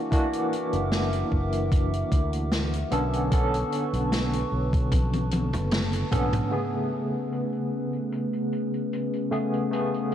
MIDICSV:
0, 0, Header, 1, 5, 480
1, 0, Start_track
1, 0, Key_signature, 3, "major"
1, 0, Tempo, 800000
1, 70, Time_signature, 4, 2, 24, 8
1, 6089, End_track
2, 0, Start_track
2, 0, Title_t, "Ambient pad"
2, 0, Program_c, 0, 92
2, 0, Note_on_c, 0, 70, 83
2, 0, Note_on_c, 0, 76, 80
2, 0, Note_on_c, 0, 78, 75
2, 0, Note_on_c, 0, 86, 93
2, 1730, Note_off_c, 0, 70, 0
2, 1730, Note_off_c, 0, 76, 0
2, 1730, Note_off_c, 0, 78, 0
2, 1730, Note_off_c, 0, 86, 0
2, 1751, Note_on_c, 0, 81, 79
2, 1752, Note_on_c, 0, 71, 82
2, 1753, Note_on_c, 0, 85, 94
2, 3889, Note_off_c, 0, 71, 0
2, 3889, Note_off_c, 0, 81, 0
2, 3890, Note_off_c, 0, 85, 0
2, 3912, Note_on_c, 0, 61, 74
2, 3913, Note_on_c, 0, 68, 75
2, 3914, Note_on_c, 0, 57, 80
2, 3915, Note_on_c, 0, 71, 91
2, 5813, Note_off_c, 0, 71, 0
2, 5828, Note_on_c, 0, 73, 93
2, 6089, Note_off_c, 0, 57, 0
2, 6089, Note_off_c, 0, 61, 0
2, 6089, Note_off_c, 0, 68, 0
2, 6089, Note_off_c, 0, 73, 0
2, 6089, End_track
3, 0, Start_track
3, 0, Title_t, "Tine electric piano"
3, 0, Program_c, 1, 4
3, 0, Control_c, 1, 64, 127
3, 0, Note_on_c, 1, 52, 99
3, 0, Note_on_c, 1, 58, 92
3, 0, Note_on_c, 1, 62, 91
3, 0, Note_on_c, 1, 66, 104
3, 62, Note_off_c, 1, 52, 0
3, 62, Note_on_c, 1, 52, 89
3, 67, Note_off_c, 1, 58, 0
3, 67, Note_on_c, 1, 58, 81
3, 74, Note_off_c, 1, 62, 0
3, 74, Note_on_c, 1, 62, 82
3, 80, Note_off_c, 1, 66, 0
3, 80, Note_on_c, 1, 66, 99
3, 1719, Note_off_c, 1, 52, 0
3, 1722, Note_off_c, 1, 58, 0
3, 1725, Note_off_c, 1, 62, 0
3, 1728, Note_off_c, 1, 66, 0
3, 1746, Note_on_c, 1, 50, 104
3, 1749, Note_on_c, 1, 59, 88
3, 1751, Note_on_c, 1, 61, 95
3, 1755, Note_on_c, 1, 69, 112
3, 1758, Control_c, 1, 64, 0
3, 1863, Control_c, 1, 64, 127
3, 1961, Note_off_c, 1, 50, 0
3, 1963, Note_off_c, 1, 59, 0
3, 1964, Note_off_c, 1, 61, 0
3, 1965, Note_off_c, 1, 69, 0
3, 1983, Note_on_c, 1, 50, 90
3, 1989, Note_on_c, 1, 59, 81
3, 1996, Note_on_c, 1, 61, 80
3, 2001, Note_on_c, 1, 69, 103
3, 3640, Note_off_c, 1, 50, 0
3, 3642, Note_off_c, 1, 59, 0
3, 3646, Note_off_c, 1, 61, 0
3, 3649, Note_off_c, 1, 69, 0
3, 3666, Note_on_c, 1, 50, 97
3, 3668, Note_on_c, 1, 59, 94
3, 3671, Note_on_c, 1, 61, 92
3, 3674, Note_on_c, 1, 69, 109
3, 3881, Note_off_c, 1, 50, 0
3, 3882, Note_off_c, 1, 59, 0
3, 3884, Note_off_c, 1, 61, 0
3, 3885, Note_off_c, 1, 69, 0
3, 3902, Note_on_c, 1, 49, 81
3, 3908, Note_on_c, 1, 57, 79
3, 3914, Note_on_c, 1, 59, 78
3, 3919, Control_c, 1, 64, 0
3, 3920, Note_on_c, 1, 68, 93
3, 4037, Control_c, 1, 64, 127
3, 5559, Note_off_c, 1, 49, 0
3, 5562, Note_off_c, 1, 57, 0
3, 5565, Note_off_c, 1, 59, 0
3, 5568, Note_off_c, 1, 68, 0
3, 5585, Note_on_c, 1, 49, 97
3, 5588, Note_on_c, 1, 57, 87
3, 5591, Note_on_c, 1, 59, 90
3, 5593, Note_on_c, 1, 68, 103
3, 5801, Note_off_c, 1, 49, 0
3, 5802, Note_off_c, 1, 57, 0
3, 5803, Note_off_c, 1, 59, 0
3, 5805, Note_off_c, 1, 68, 0
3, 5823, Note_on_c, 1, 49, 83
3, 5828, Note_on_c, 1, 57, 81
3, 5834, Note_on_c, 1, 59, 79
3, 5840, Note_on_c, 1, 68, 94
3, 6089, Note_off_c, 1, 49, 0
3, 6089, Note_off_c, 1, 57, 0
3, 6089, Note_off_c, 1, 59, 0
3, 6089, Note_off_c, 1, 68, 0
3, 6089, End_track
4, 0, Start_track
4, 0, Title_t, "Fretless electric bass"
4, 0, Program_c, 2, 35
4, 439, Note_on_c, 2, 30, 95
4, 733, Note_off_c, 2, 30, 0
4, 791, Note_on_c, 2, 30, 88
4, 1214, Note_off_c, 2, 30, 0
4, 1271, Note_on_c, 2, 38, 97
4, 1693, Note_off_c, 2, 38, 0
4, 1750, Note_on_c, 2, 35, 98
4, 2173, Note_off_c, 2, 35, 0
4, 2360, Note_on_c, 2, 35, 103
4, 2654, Note_off_c, 2, 35, 0
4, 2712, Note_on_c, 2, 35, 89
4, 3320, Note_on_c, 2, 30, 85
4, 3329, Note_off_c, 2, 35, 0
4, 3614, Note_off_c, 2, 30, 0
4, 3670, Note_on_c, 2, 35, 77
4, 3838, Note_off_c, 2, 35, 0
4, 6089, End_track
5, 0, Start_track
5, 0, Title_t, "Drums"
5, 71, Note_on_c, 9, 36, 110
5, 73, Note_on_c, 9, 42, 91
5, 131, Note_off_c, 9, 36, 0
5, 133, Note_off_c, 9, 42, 0
5, 199, Note_on_c, 9, 42, 59
5, 259, Note_off_c, 9, 42, 0
5, 316, Note_on_c, 9, 42, 68
5, 376, Note_off_c, 9, 42, 0
5, 436, Note_on_c, 9, 42, 53
5, 496, Note_off_c, 9, 42, 0
5, 550, Note_on_c, 9, 38, 110
5, 552, Note_on_c, 9, 42, 85
5, 610, Note_off_c, 9, 38, 0
5, 612, Note_off_c, 9, 42, 0
5, 676, Note_on_c, 9, 42, 59
5, 736, Note_off_c, 9, 42, 0
5, 791, Note_on_c, 9, 36, 58
5, 851, Note_off_c, 9, 36, 0
5, 914, Note_on_c, 9, 42, 55
5, 974, Note_off_c, 9, 42, 0
5, 1030, Note_on_c, 9, 36, 111
5, 1032, Note_on_c, 9, 42, 94
5, 1090, Note_off_c, 9, 36, 0
5, 1092, Note_off_c, 9, 42, 0
5, 1161, Note_on_c, 9, 42, 52
5, 1221, Note_off_c, 9, 42, 0
5, 1271, Note_on_c, 9, 36, 103
5, 1271, Note_on_c, 9, 42, 68
5, 1331, Note_off_c, 9, 36, 0
5, 1331, Note_off_c, 9, 42, 0
5, 1397, Note_on_c, 9, 42, 55
5, 1457, Note_off_c, 9, 42, 0
5, 1510, Note_on_c, 9, 38, 112
5, 1512, Note_on_c, 9, 42, 104
5, 1570, Note_off_c, 9, 38, 0
5, 1572, Note_off_c, 9, 42, 0
5, 1641, Note_on_c, 9, 42, 60
5, 1701, Note_off_c, 9, 42, 0
5, 1749, Note_on_c, 9, 42, 78
5, 1809, Note_off_c, 9, 42, 0
5, 1880, Note_on_c, 9, 42, 59
5, 1940, Note_off_c, 9, 42, 0
5, 1989, Note_on_c, 9, 42, 96
5, 1991, Note_on_c, 9, 36, 112
5, 2049, Note_off_c, 9, 42, 0
5, 2051, Note_off_c, 9, 36, 0
5, 2123, Note_on_c, 9, 42, 58
5, 2183, Note_off_c, 9, 42, 0
5, 2233, Note_on_c, 9, 42, 72
5, 2293, Note_off_c, 9, 42, 0
5, 2361, Note_on_c, 9, 42, 56
5, 2421, Note_off_c, 9, 42, 0
5, 2473, Note_on_c, 9, 38, 116
5, 2474, Note_on_c, 9, 42, 103
5, 2533, Note_off_c, 9, 38, 0
5, 2534, Note_off_c, 9, 42, 0
5, 2600, Note_on_c, 9, 42, 61
5, 2659, Note_off_c, 9, 42, 0
5, 2839, Note_on_c, 9, 36, 105
5, 2842, Note_on_c, 9, 42, 54
5, 2899, Note_off_c, 9, 36, 0
5, 2902, Note_off_c, 9, 42, 0
5, 2951, Note_on_c, 9, 36, 113
5, 2951, Note_on_c, 9, 42, 102
5, 2951, Note_on_c, 9, 48, 60
5, 3011, Note_off_c, 9, 36, 0
5, 3011, Note_off_c, 9, 42, 0
5, 3011, Note_off_c, 9, 48, 0
5, 3080, Note_on_c, 9, 42, 49
5, 3080, Note_on_c, 9, 48, 53
5, 3140, Note_off_c, 9, 42, 0
5, 3140, Note_off_c, 9, 48, 0
5, 3188, Note_on_c, 9, 42, 82
5, 3196, Note_on_c, 9, 48, 72
5, 3248, Note_off_c, 9, 42, 0
5, 3256, Note_off_c, 9, 48, 0
5, 3320, Note_on_c, 9, 47, 70
5, 3323, Note_on_c, 9, 42, 54
5, 3380, Note_off_c, 9, 47, 0
5, 3383, Note_off_c, 9, 42, 0
5, 3427, Note_on_c, 9, 42, 89
5, 3431, Note_on_c, 9, 47, 81
5, 3436, Note_on_c, 9, 38, 113
5, 3487, Note_off_c, 9, 42, 0
5, 3491, Note_off_c, 9, 47, 0
5, 3496, Note_off_c, 9, 38, 0
5, 3556, Note_on_c, 9, 42, 62
5, 3616, Note_off_c, 9, 42, 0
5, 3671, Note_on_c, 9, 36, 59
5, 3673, Note_on_c, 9, 45, 100
5, 3675, Note_on_c, 9, 42, 83
5, 3731, Note_off_c, 9, 36, 0
5, 3733, Note_off_c, 9, 45, 0
5, 3735, Note_off_c, 9, 42, 0
5, 3798, Note_on_c, 9, 45, 97
5, 3801, Note_on_c, 9, 42, 60
5, 3858, Note_off_c, 9, 45, 0
5, 3861, Note_off_c, 9, 42, 0
5, 3913, Note_on_c, 9, 42, 102
5, 3973, Note_off_c, 9, 42, 0
5, 4043, Note_on_c, 9, 42, 55
5, 4103, Note_off_c, 9, 42, 0
5, 4151, Note_on_c, 9, 42, 83
5, 4211, Note_off_c, 9, 42, 0
5, 4282, Note_on_c, 9, 42, 54
5, 4342, Note_off_c, 9, 42, 0
5, 4394, Note_on_c, 9, 42, 94
5, 4454, Note_off_c, 9, 42, 0
5, 4515, Note_on_c, 9, 42, 53
5, 4575, Note_off_c, 9, 42, 0
5, 4758, Note_on_c, 9, 42, 50
5, 4818, Note_off_c, 9, 42, 0
5, 4873, Note_on_c, 9, 42, 92
5, 4933, Note_off_c, 9, 42, 0
5, 4998, Note_on_c, 9, 42, 56
5, 5058, Note_off_c, 9, 42, 0
5, 5115, Note_on_c, 9, 42, 72
5, 5175, Note_off_c, 9, 42, 0
5, 5242, Note_on_c, 9, 42, 51
5, 5302, Note_off_c, 9, 42, 0
5, 5357, Note_on_c, 9, 42, 103
5, 5417, Note_off_c, 9, 42, 0
5, 5480, Note_on_c, 9, 42, 60
5, 5540, Note_off_c, 9, 42, 0
5, 5594, Note_on_c, 9, 42, 76
5, 5654, Note_off_c, 9, 42, 0
5, 5721, Note_on_c, 9, 42, 53
5, 5781, Note_off_c, 9, 42, 0
5, 5838, Note_on_c, 9, 42, 102
5, 5898, Note_off_c, 9, 42, 0
5, 5964, Note_on_c, 9, 42, 52
5, 6024, Note_off_c, 9, 42, 0
5, 6070, Note_on_c, 9, 42, 73
5, 6089, Note_off_c, 9, 42, 0
5, 6089, End_track
0, 0, End_of_file